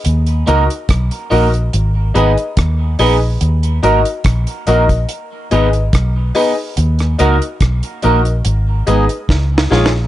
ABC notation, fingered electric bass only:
X:1
M:4/4
L:1/16
Q:1/4=72
K:Ebm
V:1 name="Fingered electric bass" clef=bass
E,,2 D,, z C,, z B,,,2 A,,,2 A,,, z E,,2 B,,,2 | E,,2 A,,, z B,,, z B,,,2 z2 A,,,2 C,,2 z2 | E,,2 D,, z C,, z B,,,2 A,,,2 A,,, z D,,2 B,,,2 |]